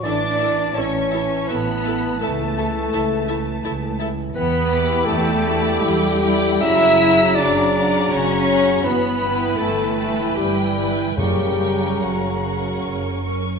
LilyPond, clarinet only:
\new Staff \with { instrumentName = "Clarinet" } { \time 3/4 \key a \major \tempo 4 = 81 d''4 cis''4 b'4 | a'2~ a'8 r8 | \key fis \phrygian b'4 a'4 g'4 | e''4 d''4 cis''4 |
b'4 a'4 g'8 r8 | g'4 fis'4. r8 | }